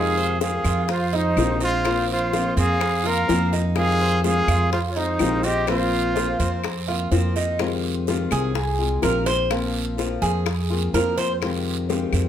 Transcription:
Already playing: F2 C3 D#3 G#3 C4 D#4 F4 G#4 F5
0.17 C5
0.40 C3 D#3 G#3 C4 F4 G#4 F5, high bongo, short guiro
0.64 F2 F4, high bongo, short guiro, claves
0.88 F4 C5, muted nylon-string guitar stroke, high bongo, long guiro
1.13 G#3 C4 D#4 F4 C5, high bongo
1.37 A#1 C3 D#3 G#3 C4 F4, high bongo, low bongo, short guiro, claves
1.60 G#3 C4 F4 C5, high bongo, short guiro
1.85 F3 A#3 C4 F4, high bongo, long guiro, claves
2.11 F4 C5
2.33 F3 A#3 C4 F4, high bongo, short guiro
2.57 F2 C4 G#4 F5, high bongo, short guiro
2.81 muted nylon-string guitar stroke, high bongo, long guiro, claves
3.03 A#3 C4 F4 A#4 F5, high bongo
3.28 F2 F3 A#3 C4 F4, high bongo, low bongo, short guiro
3.52 A#3 C4 D#4 F4, high bongo, short guiro
3.76 C3 D#3 G#3 C4 F4 G#4 F5, high bongo, long guiro, claves
4.01 C5
4.24 C3 D#3 G#3 C4 F4 G#4 F5, high bongo, short guiro
4.48 F2 F4, high bongo, short guiro, claves
4.72 F4 C5, muted nylon-string guitar stroke, high bongo, long guiro
4.88 F4 C#5
4.96 G#3 C4 D#4 F4 C5, high bongo
5.19 A#1 C3 D#3 G#3 C4 F4, high bongo, low bongo, short guiro, claves
5.43 G#3 C4 F4 G4 D#5, high bongo, short guiro
5.67 F3 A#3 C4 F4 C5, high bongo, long guiro, claves
6.15 F3 A#3 C4 F4, high bongo, short guiro
6.39 F2 C4, high bongo, short guiro
6.64 muted nylon-string guitar stroke, high bongo, long guiro, claves
6.88 A#3 C4 F4, high bongo
7.11 F2 F3 A#3 C4 F4, high bongo, low bongo, short guiro
7.36 A#3 C4 D#4 F4, high bongo, short guiro
7.59 C3 D#3 G#3 C4 F4, high bongo, long guiro, claves
8.07 C3 D#3 G#3 C4 F4, high bongo, short guiro
8.31 C2 G#4, high bongo, short guiro, claves
8.54 muted nylon-string guitar stroke, high bongo, long guiro
8.79 G#3 C4 F4, high bongo
9.02 A#1 C3 D#3 G#3 C4 F4 A#4, high bongo, low bongo, short guiro, claves
9.26 G#3 C4 F4 C5, high bongo, short guiro
9.50 F3 A#3 C4 F4, high bongo, long guiro, claves
9.97 F3 A#3 C4 F4, high bongo, short guiro
10.22 F2 G#4, high bongo, short guiro
10.46 muted nylon-string guitar stroke, high bongo, long guiro, claves
10.70 A#3 C4 F4, high bongo
10.93 F2 F3 A#3 C4 F4 A#4, high bongo, low bongo, short guiro
11.17 A#3 C4 F4 C5, high bongo, short guiro
11.41 C3 D#3 G#3 C4 F4, high bongo, long guiro, claves
11.89 C3 D#3 G#3 C4 F4, high bongo, short guiro
12.13 F2, high bongo, short guiro, claves

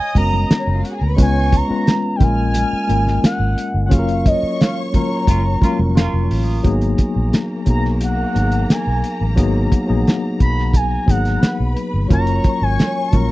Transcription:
Already playing: C#5 D#5 F5 G#5 D#6
0.15 F#1 G#3 B3 C#4 F#4 A#4 C#5 A#5, kick, closed hi-hat, high conga
0.33 high conga
0.50 muted fingered electric bass stroke, snare, closed hi-hat, muted conga
0.58 C#4 C#5
0.67 F#1 D#4 D#5
0.75 F4 F5
0.83 F#4 F#5, closed hi-hat, muted conga
0.92 G#4 G#5
1.01 D2 A#4 A#5
1.08 B4 B5
1.16 C#2 G#3 B3 C#4 F4 B4 C#5 C#6, kick, closed hi-hat, muted conga, low conga
1.22 G#5
1.52 A#5, kick, closed hi-hat, high conga
1.68 G#3 B3 C#4 F4 B4, muted fingered electric bass stroke
1.87 snare, closed hi-hat, muted conga, high conga
2.16 G#3 A#3 G5 G#5 F6
2.20 A#1 C#4 F4 A#4 D#5 G#5, kick, closed hi-hat, high conga, low conga
2.54 closed hi-hat, muted conga, high conga
2.73 muted fingered electric bass stroke
2.87 G#1 G#3 A#3 C#4 F4 A#4, closed hi-hat, high conga
3.07 snare, high conga
3.23 F#5, muted fingered electric bass stroke, snare, closed hi-hat
3.40 G#1
3.58 closed hi-hat, muted conga
3.74 G1
3.86 F#3 A#3 F#5
3.90 F#1 C#4 F4 G#4 C#5 F5 C#6, kick, closed hi-hat, low conga
3.99 A#4
4.09 closed hi-hat
4.26 D#5, kick, closed hi-hat, muted conga, high conga
4.43 muted fingered electric bass stroke
4.61 F5, snare, closed hi-hat, muted conga, high conga
4.92 F#3 A#3 C#4 F4 A#4 A#5, kick, closed hi-hat, muted conga, high conga, low conga
5.27 F#1 A#3 C#4 F4, kick, closed hi-hat, high conga
5.61 F#3 A#3 C#4 F4 A#4, muted fingered electric bass stroke, kick, closed hi-hat, muted conga, high conga
5.79 F1, high conga
5.96 A#3 C#4 F4 A#5, snare, closed hi-hat, muted conga
6.14 F1
6.18 C#6
6.31 A1, open hi-hat
6.43 D#6
6.63 G#1 F#3 A#3 B3 D#4 G#4 G#5 A#5, kick, closed hi-hat
6.81 closed hi-hat
6.89 C#6
6.98 kick, closed hi-hat
7.16 A#1
7.33 snare, closed hi-hat
7.66 B1 F#3 A#3 B3 D#4 G#4 A#5, kick, closed hi-hat
7.85 snare
7.91 C#6
8.01 F#5, closed hi-hat
8.34 G#1 F#3 A#3 B3 D#4 F#4, closed hi-hat
8.43 G#4
8.52 closed hi-hat
8.70 G#5, snare, closed hi-hat
8.87 B1
9.04 G#5, closed hi-hat
9.21 A1
9.36 G#1 F#3 A#3 B3 D#4 G#4, kick, closed hi-hat
9.71 F#5, kick, closed hi-hat
9.86 A#1 F#3 A#3 B3 D#4 G#4
10.07 snare, closed hi-hat
10.40 B1 B5, kick, closed hi-hat
10.59 snare
10.74 G#5, kick, closed hi-hat
11.06 G#1 F#3 A#3 B3 D#4 G#4, kick, closed hi-hat
11.10 F#5
11.25 snare, closed hi-hat
11.41 B4 B5, snare, closed hi-hat
11.60 B1
11.77 closed hi-hat
11.94 G1
12.09 F#1 F#3 A#3 C#4 F4 A#4 C#5 A#5 C#6, kick, closed hi-hat, muted conga, low conga
12.27 closed hi-hat
12.44 kick, closed hi-hat
12.62 G#1 G#5
12.79 snare, closed hi-hat, muted conga, high conga
13.08 F#3 A5, closed hi-hat
13.12 A#1 A#3 C#4 F4 A#4 A#5, kick, high conga, low conga

